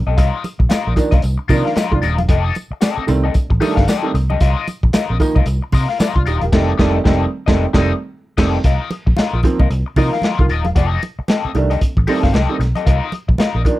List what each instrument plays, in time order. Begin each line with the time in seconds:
0.07 fingered electric bass B1, upright piano A3 C4, clean electric guitar G4 A4 D#5
0.17 fingered electric bass C2, clean electric guitar F4 A#4 D#5, kick, closed hi-hat, tambourine
0.44 closed hi-hat, tambourine, muted conga
0.59 fingered electric bass A#1, muted clean electric guitar stroke, kick
0.69 upright piano A#3 D4, clean electric guitar F4 A#4 D#5, snare, closed hi-hat, tambourine, high conga
0.87 fingered electric bass A#1, upright piano A#3 D4
0.96 upright piano D#3 F3 A#3 D4, muted clean electric guitar stroke, kick, closed hi-hat, tambourine, muted conga
1.11 fingered electric bass C2, clean electric guitar F4 A#4 D#5, kick, closed hi-hat, low conga
1.22 fingered electric bass C2, upright piano A#3 D4, muted clean electric guitar stroke, closed hi-hat, tambourine
1.38 muted clean electric guitar stroke
1.48 fingered electric bass C3, upright piano D#3 F3 A#3 D4, clean electric guitar F4 A#4 D#5, kick, open hi-hat, tambourine, muted conga, low conga
1.65 clean electric guitar F4 A#4 F5, snare
1.75 clean electric guitar F4 A#4 D#5, snare, closed hi-hat, tambourine, high conga
1.91 fingered electric bass C2, upright piano D#3 F3 A#3 D4, muted clean electric guitar stroke, kick
2.02 fingered electric bass D#1, clean electric guitar F4 A#4 D#5, closed hi-hat, tambourine
2.18 fingered electric bass E1, upright piano A#3 D4, muted clean electric guitar stroke, closed hi-hat, high conga
2.29 fingered electric bass F1, clean electric guitar G4 A4 D#5, kick, closed hi-hat
2.55 closed hi-hat, tambourine, muted conga
2.71 muted fingered electric bass stroke, muted clean electric guitar stroke
2.81 upright piano A3 C4, clean electric guitar G4 A4 D#5, snare, closed hi-hat, tambourine, high conga
2.97 upright piano A3 C4, muted fingered electric bass stroke
3.07 fingered electric bass C2, upright piano D#3 G3 A3 C4, muted clean electric guitar stroke, closed hi-hat, tambourine, low conga
3.24 clean electric guitar G4 A4 D#5
3.34 upright piano A3 D4, muted clean electric guitar stroke, muted fingered electric bass stroke, kick, closed hi-hat, tambourine
3.50 fingered electric bass A1, muted clean electric guitar stroke, kick
3.60 upright piano D#3 G3 A3 D4, clean electric guitar G4 A4 D#5, open hi-hat, tambourine, muted conga
3.76 fingered electric bass G1, clean electric guitar G4 A4 F5, kick, snare
3.87 clean electric guitar G4 A4 D#5, snare, closed hi-hat, tambourine, high conga
4.03 upright piano D#3 G3 A3 C4
4.14 fingered electric bass C2, muted clean electric guitar stroke, closed hi-hat, tambourine
4.29 upright piano A3 C4, clean electric guitar G4 A4 D#5, high conga
4.40 fingered electric bass C2, clean electric guitar F4 A#4 D#5, kick, closed hi-hat
4.67 closed hi-hat, tambourine, muted conga
4.83 fingered electric bass A#1, muted clean electric guitar stroke, kick
4.93 upright piano A#3 D4, clean electric guitar F4 A#4 D#5, snare, closed hi-hat, tambourine, high conga
5.09 fingered electric bass A#1, upright piano A#3 C4
5.20 upright piano D#3 F3 A#3 D#4, muted clean electric guitar stroke, kick, closed hi-hat, tambourine
5.35 fingered electric bass C2, clean electric guitar F4 A#4 D#5, kick, low conga
5.46 fingered electric bass C2, upright piano A#3 F4, muted clean electric guitar stroke, closed hi-hat, tambourine
5.62 muted clean electric guitar stroke
5.72 fingered electric bass C3, clean electric guitar F4 A#4 D#5, kick, open hi-hat, tambourine, muted conga, low conga
5.88 clean electric guitar F4 A#4 F5, snare
5.99 clean electric guitar F4 A#4 D#5, snare, closed hi-hat, tambourine, high conga
6.15 fingered electric bass C2, upright piano D4 F4, muted clean electric guitar stroke, kick
6.26 fingered electric bass D#1, upright piano D#4 G4, clean electric guitar F4 A#4 D#5, closed hi-hat, tambourine
6.41 fingered electric bass E1, upright piano G4 A#4, muted clean electric guitar stroke, closed hi-hat, high conga
6.52 fingered electric bass F1, upright piano D#3 G3 A3 C4, clean electric guitar G4 A4 D#5, kick, snare, crash
6.78 fingered electric bass F1, upright piano D#3 G3 A3 C4, clean electric guitar G4 A4 D#5, kick, snare
7.04 fingered electric bass F1, upright piano D#3 G3 A3 C4, clean electric guitar G4 A4 D#5, kick, snare
7.46 fingered electric bass F1, upright piano D#3 G3 A3 C4, clean electric guitar G4 A4 D#5, kick, snare
7.73 fingered electric bass F1, upright piano D#3 G3 A3 C4, clean electric guitar G4 A4 D#5, kick, snare
8.37 fingered electric bass F1, upright piano D#3 G3 A3 C4, clean electric guitar G4 A4 D#5, kick, snare, crash
8.64 fingered electric bass C2, clean electric guitar F4 A#4 D#5, kick, closed hi-hat
8.91 closed hi-hat, muted conga
9.06 fingered electric bass A#1, muted clean electric guitar stroke, kick
9.17 upright piano A#3 D4, clean electric guitar F4 A#4 D#5, muted fingered electric bass stroke, snare, closed hi-hat, high conga
9.33 fingered electric bass A#1, upright piano A#3 F4
9.43 upright piano D#3 F3 A#3 C4, muted clean electric guitar stroke, kick, closed hi-hat, muted conga
9.59 fingered electric bass C2, clean electric guitar F4 A#4 D#5, kick, low conga
9.70 fingered electric bass C2, upright piano A#3 F4, muted clean electric guitar stroke, closed hi-hat
9.86 muted clean electric guitar stroke
9.96 fingered electric bass C3, upright piano D#3 F3 A#3 D#4, clean electric guitar F4 A#4 D#5, kick, open hi-hat, muted conga, low conga
10.13 clean electric guitar F4 A#4 F5, snare
10.22 clean electric guitar F4 A#4 D#5, snare, closed hi-hat, high conga
10.39 fingered electric bass C2, upright piano D#3 F3 A#3 F4, muted clean electric guitar stroke, kick
10.49 fingered electric bass D#1, clean electric guitar F4 A#4 D#5, closed hi-hat
10.65 fingered electric bass E1, upright piano A#3 D4, muted clean electric guitar stroke, closed hi-hat, high conga
10.75 fingered electric bass F1, clean electric guitar G4 A4 D#5, kick, closed hi-hat
11.02 closed hi-hat, muted conga
11.19 muted fingered electric bass stroke, muted clean electric guitar stroke
11.28 upright piano A3 C4, clean electric guitar G4 A4 D#5, snare, closed hi-hat, high conga
11.44 upright piano A3 C4, muted fingered electric bass stroke
11.55 fingered electric bass C2, upright piano D#3 G3 A3 D4, muted clean electric guitar stroke, closed hi-hat, muted conga, low conga
11.70 clean electric guitar G4 A4 D#5, closed hi-hat
11.81 upright piano A3 C4, muted clean electric guitar stroke, muted fingered electric bass stroke, kick, closed hi-hat
11.97 fingered electric bass A1, muted clean electric guitar stroke, kick
12.07 upright piano D#3 G3 A3 C4, clean electric guitar G4 A4 D#5, open hi-hat, muted conga
12.23 fingered electric bass G1, clean electric guitar G4 A4 F5, kick, snare
12.33 fingered electric bass C2, clean electric guitar G4 A4 D#5, snare, closed hi-hat, high conga
12.49 upright piano D#3 G3 A3 C4
12.59 fingered electric bass B1, muted clean electric guitar stroke, snare, closed hi-hat
12.75 upright piano A3 C4, clean electric guitar G4 A4 D#5, closed hi-hat, high conga
12.86 fingered electric bass C2, clean electric guitar F4 A#4 D#5, kick, closed hi-hat
13.12 closed hi-hat, muted conga
13.28 fingered electric bass A#1, muted clean electric guitar stroke, kick
13.38 upright piano A#3 D4, clean electric guitar F4 A#4 D#5, snare, closed hi-hat, high conga
13.55 fingered electric bass A#1, upright piano A#3 D4
13.65 upright piano D#3 F3 A#3 D4, muted clean electric guitar stroke, kick, closed hi-hat